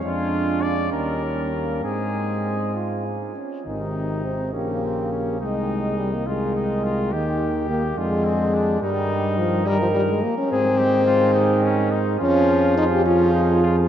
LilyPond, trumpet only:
\new Staff \with { instrumentName = "Trumpet" } { \time 6/8 \key aes \major \tempo 4. = 70 f'4 d''8 bes'4. | aes'4. r4. | ees'4. des'8 c'8 des'8 | ees'4. f'8 ees'8 f'8 |
g'4. f'8 c'8 d'8 | ees'4. bes'4 r8 | aes'8 g'8 f'8 ees'8 des'8 ees'8 | f'4. des'8 ees'8 f'8 | }